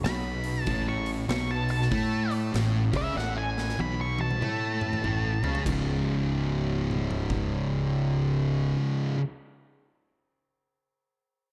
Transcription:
Already playing: C#3 F#3 D#4
0.04 B1 B2 B5, snare, open hi-hat
0.44 open hi-hat
0.61 A5
0.67 A1 A2, kick, open hi-hat
0.89 C#6
1.06 open hi-hat
1.28 B1 B2 C#6, snare, open hi-hat
1.51 A5
1.69 A5, open hi-hat
1.82 snare
1.91 A2 A3, kick, open hi-hat
2.31 open hi-hat
2.52 A1 A2, snare, open hi-hat
2.92 C#2 C#3, kick, open hi-hat
2.97 E5
3.15 A1 A2 F#5, snare
3.38 G#5
3.58 snare
3.69 snare
3.78 B1 B2 B5, high tom
4.01 C#6
4.19 A5, high tom
4.31 mid tom
4.40 A2 A3, mid tom
4.81 mid tom
4.93 mid tom
5.03 A1 A2, mid tom
5.42 C#2 C#3, floor tom
5.55 floor tom
5.65 C#1 C#2 G#2 C#3, kick, crash
6.91 mid tom
7.11 floor tom
7.30 kick

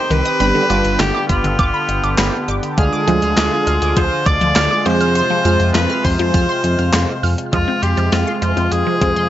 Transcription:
Already playing: D#3 C4 G4 C5
0.10 C2 D#3 B4, closed hi-hat
0.25 D#6, closed hi-hat
0.40 G1 D3 G3 B3 D4 G4 B5, closed hi-hat
0.55 D3
0.70 G1 G3 B3 D4 F4 D6, closed hi-hat
0.85 G1, closed hi-hat
0.99 G1 D3 G4, snare, clap, closed hi-hat
1.15 D6
1.29 G1 F4 B5, kick, closed hi-hat
1.44 G1 D3, closed hi-hat
1.59 G1 D6, kick, closed hi-hat
1.74 B5
1.89 G1, closed hi-hat
2.04 G1 D6, closed hi-hat
2.18 G1 B5, snare, clap, closed hi-hat
2.48 G1 D6, closed hi-hat
2.63 closed hi-hat
2.78 D2 G#3 D4 F4 G#4 F6, kick, closed hi-hat
2.93 D6
3.08 D2 F3 G#3 D4 F4 G#4, closed hi-hat
3.22 D2 F6, closed hi-hat
3.37 D2 D6, snare, clap, closed hi-hat
3.67 D2 F6, closed hi-hat
3.82 D2 D6, closed hi-hat
3.96 D2 F3 C5, kick, closed hi-hat
4.26 D2 D5 D6, kick, closed hi-hat
4.41 D2 F3, closed hi-hat
4.56 D2 F6, snare, clap, closed hi-hat
4.71 D6
4.86 F2 C3 F3 G#3 C4 F4 G#4 C5, closed hi-hat
5.01 F6, closed hi-hat
5.15 C6, closed hi-hat
5.30 F3
5.45 F2 G#3 C4 F4 G#4 F6, closed hi-hat
5.60 F2, closed hi-hat
5.75 F2 F3 B4, snare, clap, closed hi-hat
5.90 F6
6.04 F2 C5 C6, kick, open hi-hat
6.19 F2 F3, closed hi-hat
6.34 F2 F6, kick, closed hi-hat
6.49 C6
6.64 F2, closed hi-hat
6.79 F2 F6, closed hi-hat
6.93 F2 C6, snare, clap, closed hi-hat
7.23 F2 F6, open hi-hat
7.38 closed hi-hat
7.53 F2 C3 F3 G#3 C4 F4 G#4, kick, closed hi-hat
7.68 C4
7.83 F2 G4 C6, closed hi-hat
7.97 F2 F3, closed hi-hat
8.12 F2 C4 F4, snare, closed hi-hat
8.27 C6
8.42 F2 F3 F4, closed hi-hat
8.57 F2 C4, closed hi-hat
8.72 F2 G#4, closed hi-hat
8.87 F3
9.01 F2 G#3 C4 F4 G#4, kick, closed hi-hat
9.16 F2 C6, closed hi-hat

